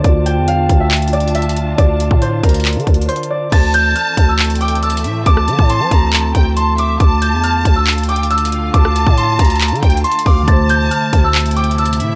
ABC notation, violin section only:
X:1
M:4/4
L:1/8
Q:1/4=138
K:Dm
V:1 name="Violin section"
z8 | z8 | a4- a g a e | a4- a g a e |
a4- a g a f | a4- a g a f | a4- a g a e |]